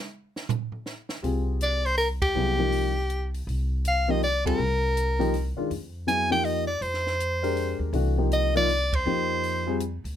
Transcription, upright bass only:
1.23 2.31 C2 medium
2.36 3.43 C2 medium
3.47 4.55 C2 medium
4.59 5.53 C2 medium
5.57 muted upright bass stroke soft
5.70 6.78 F2 medium
6.81 7.76 F2 medium
7.79 7.92 D#2 medium
7.93 9.01 C2 medium
9.06 10.00 F2 medium
10.04 10.16 D2 medium

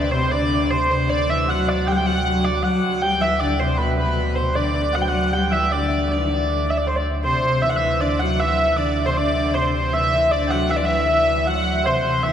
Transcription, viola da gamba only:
0.00 0.11 D3 medium
0.13 0.31 C3 medium
0.33 0.73 D3 medium
0.71 0.89 C3 medium
0.90 1.10 C3 medium
1.08 1.27 D3 medium
1.28 1.46 E3 medium
1.47 1.88 F#3 medium
1.87 2.06 G3 medium
2.05 2.24 F#3 medium
2.25 2.60 F#3 medium
2.63 3.03 F#3 medium
3.01 3.22 G3 medium
3.21 3.40 E3 medium
3.41 3.59 D3 medium
3.60 3.78 C3 medium
3.79 3.97 B2 medium
4.00 4.52 B2 medium
4.56 4.73 D3 medium
4.75 4.83 D3 medium
4.95 5.07 F#3 medium
5.08 5.30 F#3 medium
5.33 5.53 G3 medium
5.51 5.70 E3 medium
5.70 6.06 D3 medium
6.09 6.19 D3 medium
6.17 6.27 E3 medium
6.26 6.36 D3 medium
6.34 6.44 E3 medium
6.42 6.69 D3 medium
7.24 7.42 C3 medium
7.43 7.64 C3 medium
7.62 7.76 E3 medium
7.77 8.02 E3 medium
8.01 8.23 D3 medium
8.21 8.41 F#3 medium
8.40 8.79 E3 medium
8.77 9.06 D3 medium
9.06 9.11 C3 medium
9.16 9.34 D3 medium
9.36 9.57 D3 medium
9.55 9.95 C3 medium
9.93 10.12 E3 medium
10.13 10.31 E3 medium
10.32 10.53 D3 medium
10.51 10.72 F#3 medium
10.70 10.83 E3 medium
10.84 11.07 E3 medium
11.08 11.48 E3 medium
11.46 11.75 F#3 medium
11.85 12.03 C3 medium
12.04 12.22 C3 medium
12.24 12.33 E3 medium

